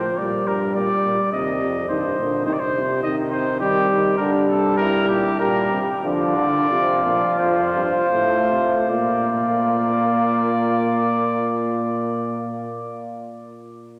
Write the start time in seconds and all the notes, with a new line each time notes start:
Already playing: F3 C5
0.18 A#2 G3 D5
0.47 G2 A#4
0.75 A#2 D5
1.05 A#2
1.32 D#2 C3 D#5
1.62 F2
1.89 G2 D#3 C5
2.18 A#2 D3
2.46 C3 D#3 C5
2.53 D5
2.60 C5
2.75 C3
3.03 C3 D#3 D#5
3.31 C5
3.60 D#3 G3 C4 G4
3.90 D#3
4.17 D3 G3 D4 A#4
4.48 C3 A4
4.77 G2 E4 A#4
5.08 A#2 G4
5.39 A#2 G3 G4 A#4
5.72 C3
6.03 D3 F3 F4 D5
6.37 D3
6.69 C3 F3
7.05 A#2
7.39 F2 C5
7.76 G2
8.11 A2 A3
8.51 C3
8.90 A#2 A#3 F4 D5